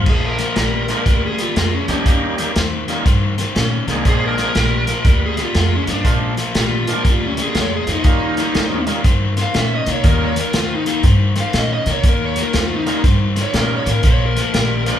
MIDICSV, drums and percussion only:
0, 0, Header, 1, 2, 480
1, 0, Start_track
1, 0, Tempo, 499168
1, 65, Time_signature, 4, 2, 24, 8
1, 14417, End_track
2, 0, Start_track
2, 0, Title_t, "Drums"
2, 59, Note_on_c, 9, 49, 89
2, 60, Note_on_c, 9, 36, 96
2, 66, Note_on_c, 9, 38, 29
2, 155, Note_off_c, 9, 49, 0
2, 156, Note_off_c, 9, 36, 0
2, 162, Note_off_c, 9, 38, 0
2, 370, Note_on_c, 9, 42, 64
2, 377, Note_on_c, 9, 38, 36
2, 466, Note_off_c, 9, 42, 0
2, 473, Note_off_c, 9, 38, 0
2, 537, Note_on_c, 9, 42, 74
2, 543, Note_on_c, 9, 38, 100
2, 633, Note_off_c, 9, 42, 0
2, 640, Note_off_c, 9, 38, 0
2, 849, Note_on_c, 9, 42, 58
2, 856, Note_on_c, 9, 38, 29
2, 946, Note_off_c, 9, 42, 0
2, 952, Note_off_c, 9, 38, 0
2, 1019, Note_on_c, 9, 36, 96
2, 1022, Note_on_c, 9, 42, 76
2, 1029, Note_on_c, 9, 38, 32
2, 1115, Note_off_c, 9, 36, 0
2, 1119, Note_off_c, 9, 42, 0
2, 1125, Note_off_c, 9, 38, 0
2, 1332, Note_on_c, 9, 42, 59
2, 1338, Note_on_c, 9, 38, 31
2, 1428, Note_off_c, 9, 42, 0
2, 1435, Note_off_c, 9, 38, 0
2, 1502, Note_on_c, 9, 42, 77
2, 1509, Note_on_c, 9, 38, 89
2, 1598, Note_off_c, 9, 42, 0
2, 1605, Note_off_c, 9, 38, 0
2, 1810, Note_on_c, 9, 42, 57
2, 1816, Note_on_c, 9, 38, 31
2, 1906, Note_off_c, 9, 42, 0
2, 1913, Note_off_c, 9, 38, 0
2, 1979, Note_on_c, 9, 36, 92
2, 1980, Note_on_c, 9, 42, 84
2, 1987, Note_on_c, 9, 38, 29
2, 2075, Note_off_c, 9, 36, 0
2, 2076, Note_off_c, 9, 42, 0
2, 2083, Note_off_c, 9, 38, 0
2, 2291, Note_on_c, 9, 42, 66
2, 2297, Note_on_c, 9, 38, 34
2, 2387, Note_off_c, 9, 42, 0
2, 2394, Note_off_c, 9, 38, 0
2, 2458, Note_on_c, 9, 42, 81
2, 2465, Note_on_c, 9, 38, 104
2, 2554, Note_off_c, 9, 42, 0
2, 2561, Note_off_c, 9, 38, 0
2, 2770, Note_on_c, 9, 42, 52
2, 2777, Note_on_c, 9, 38, 30
2, 2867, Note_off_c, 9, 42, 0
2, 2873, Note_off_c, 9, 38, 0
2, 2940, Note_on_c, 9, 36, 103
2, 2942, Note_on_c, 9, 42, 79
2, 2948, Note_on_c, 9, 38, 30
2, 3036, Note_off_c, 9, 36, 0
2, 3038, Note_off_c, 9, 42, 0
2, 3044, Note_off_c, 9, 38, 0
2, 3251, Note_on_c, 9, 42, 58
2, 3258, Note_on_c, 9, 38, 33
2, 3347, Note_off_c, 9, 42, 0
2, 3354, Note_off_c, 9, 38, 0
2, 3420, Note_on_c, 9, 42, 70
2, 3427, Note_on_c, 9, 38, 96
2, 3516, Note_off_c, 9, 42, 0
2, 3523, Note_off_c, 9, 38, 0
2, 3729, Note_on_c, 9, 42, 52
2, 3736, Note_on_c, 9, 38, 30
2, 3826, Note_off_c, 9, 42, 0
2, 3832, Note_off_c, 9, 38, 0
2, 3896, Note_on_c, 9, 42, 74
2, 3897, Note_on_c, 9, 36, 100
2, 3903, Note_on_c, 9, 38, 30
2, 3992, Note_off_c, 9, 42, 0
2, 3993, Note_off_c, 9, 36, 0
2, 3999, Note_off_c, 9, 38, 0
2, 4211, Note_on_c, 9, 42, 62
2, 4218, Note_on_c, 9, 38, 35
2, 4307, Note_off_c, 9, 42, 0
2, 4314, Note_off_c, 9, 38, 0
2, 4375, Note_on_c, 9, 42, 75
2, 4382, Note_on_c, 9, 38, 101
2, 4471, Note_off_c, 9, 42, 0
2, 4478, Note_off_c, 9, 38, 0
2, 4685, Note_on_c, 9, 42, 62
2, 4691, Note_on_c, 9, 38, 32
2, 4781, Note_off_c, 9, 42, 0
2, 4788, Note_off_c, 9, 38, 0
2, 4854, Note_on_c, 9, 36, 101
2, 4854, Note_on_c, 9, 42, 80
2, 4860, Note_on_c, 9, 38, 30
2, 4950, Note_off_c, 9, 42, 0
2, 4951, Note_off_c, 9, 36, 0
2, 4957, Note_off_c, 9, 38, 0
2, 5165, Note_on_c, 9, 42, 58
2, 5171, Note_on_c, 9, 38, 32
2, 5261, Note_off_c, 9, 42, 0
2, 5268, Note_off_c, 9, 38, 0
2, 5332, Note_on_c, 9, 42, 75
2, 5339, Note_on_c, 9, 38, 90
2, 5428, Note_off_c, 9, 42, 0
2, 5435, Note_off_c, 9, 38, 0
2, 5648, Note_on_c, 9, 42, 59
2, 5654, Note_on_c, 9, 38, 32
2, 5744, Note_off_c, 9, 42, 0
2, 5751, Note_off_c, 9, 38, 0
2, 5815, Note_on_c, 9, 36, 97
2, 5815, Note_on_c, 9, 42, 78
2, 5822, Note_on_c, 9, 38, 32
2, 5911, Note_off_c, 9, 36, 0
2, 5912, Note_off_c, 9, 42, 0
2, 5918, Note_off_c, 9, 38, 0
2, 6128, Note_on_c, 9, 42, 60
2, 6135, Note_on_c, 9, 38, 34
2, 6225, Note_off_c, 9, 42, 0
2, 6231, Note_off_c, 9, 38, 0
2, 6295, Note_on_c, 9, 42, 78
2, 6302, Note_on_c, 9, 38, 108
2, 6392, Note_off_c, 9, 42, 0
2, 6398, Note_off_c, 9, 38, 0
2, 6610, Note_on_c, 9, 42, 57
2, 6616, Note_on_c, 9, 38, 32
2, 6706, Note_off_c, 9, 42, 0
2, 6713, Note_off_c, 9, 38, 0
2, 6777, Note_on_c, 9, 36, 99
2, 6779, Note_on_c, 9, 42, 80
2, 6786, Note_on_c, 9, 38, 30
2, 6873, Note_off_c, 9, 36, 0
2, 6875, Note_off_c, 9, 42, 0
2, 6882, Note_off_c, 9, 38, 0
2, 7089, Note_on_c, 9, 42, 60
2, 7096, Note_on_c, 9, 38, 35
2, 7185, Note_off_c, 9, 42, 0
2, 7192, Note_off_c, 9, 38, 0
2, 7257, Note_on_c, 9, 42, 70
2, 7264, Note_on_c, 9, 38, 97
2, 7353, Note_off_c, 9, 42, 0
2, 7360, Note_off_c, 9, 38, 0
2, 7568, Note_on_c, 9, 42, 54
2, 7574, Note_on_c, 9, 38, 31
2, 7664, Note_off_c, 9, 42, 0
2, 7671, Note_off_c, 9, 38, 0
2, 7731, Note_on_c, 9, 42, 71
2, 7736, Note_on_c, 9, 36, 101
2, 7738, Note_on_c, 9, 38, 31
2, 7828, Note_off_c, 9, 42, 0
2, 7833, Note_off_c, 9, 36, 0
2, 7834, Note_off_c, 9, 38, 0
2, 8049, Note_on_c, 9, 42, 58
2, 8056, Note_on_c, 9, 38, 35
2, 8146, Note_off_c, 9, 42, 0
2, 8152, Note_off_c, 9, 38, 0
2, 8217, Note_on_c, 9, 42, 69
2, 8224, Note_on_c, 9, 38, 101
2, 8314, Note_off_c, 9, 42, 0
2, 8320, Note_off_c, 9, 38, 0
2, 8526, Note_on_c, 9, 42, 56
2, 8533, Note_on_c, 9, 38, 32
2, 8623, Note_off_c, 9, 42, 0
2, 8629, Note_off_c, 9, 38, 0
2, 8696, Note_on_c, 9, 42, 74
2, 8697, Note_on_c, 9, 36, 104
2, 8702, Note_on_c, 9, 38, 32
2, 8792, Note_off_c, 9, 42, 0
2, 8794, Note_off_c, 9, 36, 0
2, 8799, Note_off_c, 9, 38, 0
2, 9008, Note_on_c, 9, 42, 60
2, 9015, Note_on_c, 9, 38, 33
2, 9105, Note_off_c, 9, 42, 0
2, 9111, Note_off_c, 9, 38, 0
2, 9175, Note_on_c, 9, 42, 72
2, 9181, Note_on_c, 9, 38, 97
2, 9271, Note_off_c, 9, 42, 0
2, 9277, Note_off_c, 9, 38, 0
2, 9485, Note_on_c, 9, 42, 57
2, 9491, Note_on_c, 9, 38, 31
2, 9581, Note_off_c, 9, 42, 0
2, 9587, Note_off_c, 9, 38, 0
2, 9651, Note_on_c, 9, 42, 81
2, 9655, Note_on_c, 9, 36, 100
2, 9658, Note_on_c, 9, 38, 31
2, 9747, Note_off_c, 9, 42, 0
2, 9751, Note_off_c, 9, 36, 0
2, 9754, Note_off_c, 9, 38, 0
2, 9964, Note_on_c, 9, 42, 68
2, 9971, Note_on_c, 9, 38, 36
2, 10060, Note_off_c, 9, 42, 0
2, 10067, Note_off_c, 9, 38, 0
2, 10128, Note_on_c, 9, 42, 82
2, 10134, Note_on_c, 9, 38, 104
2, 10224, Note_off_c, 9, 42, 0
2, 10231, Note_off_c, 9, 38, 0
2, 10444, Note_on_c, 9, 42, 60
2, 10450, Note_on_c, 9, 38, 34
2, 10540, Note_off_c, 9, 42, 0
2, 10547, Note_off_c, 9, 38, 0
2, 10609, Note_on_c, 9, 42, 76
2, 10614, Note_on_c, 9, 36, 99
2, 10616, Note_on_c, 9, 38, 34
2, 10705, Note_off_c, 9, 42, 0
2, 10710, Note_off_c, 9, 36, 0
2, 10712, Note_off_c, 9, 38, 0
2, 10920, Note_on_c, 9, 42, 56
2, 10926, Note_on_c, 9, 38, 33
2, 11016, Note_off_c, 9, 42, 0
2, 11023, Note_off_c, 9, 38, 0
2, 11090, Note_on_c, 9, 42, 79
2, 11096, Note_on_c, 9, 38, 92
2, 11186, Note_off_c, 9, 42, 0
2, 11193, Note_off_c, 9, 38, 0
2, 11403, Note_on_c, 9, 42, 53
2, 11410, Note_on_c, 9, 38, 33
2, 11499, Note_off_c, 9, 42, 0
2, 11506, Note_off_c, 9, 38, 0
2, 11572, Note_on_c, 9, 42, 81
2, 11574, Note_on_c, 9, 36, 102
2, 11579, Note_on_c, 9, 38, 32
2, 11668, Note_off_c, 9, 42, 0
2, 11670, Note_off_c, 9, 36, 0
2, 11675, Note_off_c, 9, 38, 0
2, 11884, Note_on_c, 9, 42, 64
2, 11890, Note_on_c, 9, 38, 37
2, 11980, Note_off_c, 9, 42, 0
2, 11987, Note_off_c, 9, 38, 0
2, 12051, Note_on_c, 9, 42, 74
2, 12058, Note_on_c, 9, 38, 97
2, 12148, Note_off_c, 9, 42, 0
2, 12154, Note_off_c, 9, 38, 0
2, 12371, Note_on_c, 9, 42, 54
2, 12378, Note_on_c, 9, 38, 32
2, 12467, Note_off_c, 9, 42, 0
2, 12474, Note_off_c, 9, 38, 0
2, 12539, Note_on_c, 9, 36, 109
2, 12539, Note_on_c, 9, 42, 72
2, 12545, Note_on_c, 9, 38, 32
2, 12635, Note_off_c, 9, 36, 0
2, 12635, Note_off_c, 9, 42, 0
2, 12641, Note_off_c, 9, 38, 0
2, 12850, Note_on_c, 9, 42, 62
2, 12857, Note_on_c, 9, 38, 34
2, 12946, Note_off_c, 9, 42, 0
2, 12953, Note_off_c, 9, 38, 0
2, 13016, Note_on_c, 9, 42, 74
2, 13023, Note_on_c, 9, 38, 95
2, 13112, Note_off_c, 9, 42, 0
2, 13119, Note_off_c, 9, 38, 0
2, 13330, Note_on_c, 9, 42, 59
2, 13337, Note_on_c, 9, 38, 31
2, 13427, Note_off_c, 9, 42, 0
2, 13433, Note_off_c, 9, 38, 0
2, 13491, Note_on_c, 9, 42, 80
2, 13497, Note_on_c, 9, 36, 109
2, 13498, Note_on_c, 9, 38, 32
2, 13588, Note_off_c, 9, 42, 0
2, 13594, Note_off_c, 9, 36, 0
2, 13594, Note_off_c, 9, 38, 0
2, 13813, Note_on_c, 9, 42, 67
2, 13820, Note_on_c, 9, 38, 36
2, 13909, Note_off_c, 9, 42, 0
2, 13916, Note_off_c, 9, 38, 0
2, 13981, Note_on_c, 9, 42, 81
2, 13987, Note_on_c, 9, 38, 103
2, 14077, Note_off_c, 9, 42, 0
2, 14083, Note_off_c, 9, 38, 0
2, 14293, Note_on_c, 9, 42, 61
2, 14299, Note_on_c, 9, 38, 34
2, 14389, Note_off_c, 9, 42, 0
2, 14395, Note_off_c, 9, 38, 0
2, 14417, End_track
0, 0, End_of_file